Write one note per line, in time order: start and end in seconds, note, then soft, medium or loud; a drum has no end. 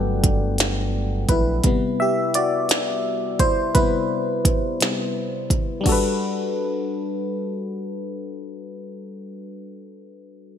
0.00 1.26 G1 loud
0.00 1.66 F#3 medium
0.00 1.66 A3 medium
0.00 1.66 B3 medium
0.00 0.91 D4 medium
0.00 1.66 F#4 medium
0.00 1.67 A4 medium
0.00 1.29 B4 medium
0.00 1.66 D5 medium
0.00 1.66 F#5 loud
0.00 1.66 G5 loud
0.24 kick loud
0.24 closed hi-hat medium
0.58 snare loud
0.58 closed hi-hat medium
1.29 1.61 A#1 medium
1.29 1.96 E4 medium
1.29 1.95 B4 medium
1.29 kick medium
1.29 closed hi-hat medium
1.64 2.66 C3 medium
1.64 2.66 G3 medium
1.64 2.67 B3 medium
1.64 kick loud
1.64 closed hi-hat medium
2.00 2.33 G4 medium
2.00 2.36 E5 loud
2.34 3.02 F#4 medium
2.34 3.01 D5 loud
2.34 closed hi-hat loud
2.69 snare loud
2.69 closed hi-hat medium
3.39 3.74 E4 medium
3.39 3.76 C5 loud
3.39 kick loud
3.39 closed hi-hat medium
3.75 4.76 C3 medium
3.75 4.77 G3 soft
3.75 4.77 B3 medium
3.75 5.47 E4 medium
3.75 5.46 B4 loud
3.75 kick loud
3.75 closed hi-hat medium
4.45 kick loud
4.45 closed hi-hat medium
4.81 5.12 C3 medium
4.81 5.12 G3 soft
4.81 5.13 B3 medium
4.81 snare loud
4.81 closed hi-hat medium
5.50 kick loud
5.50 closed hi-hat medium
5.81 8.92 G3 medium
5.81 8.95 D4 medium
5.86 8.98 F#4 medium
5.86 9.00 A4 medium
5.86 kick medium
5.86 crash medium
5.92 9.03 B4 medium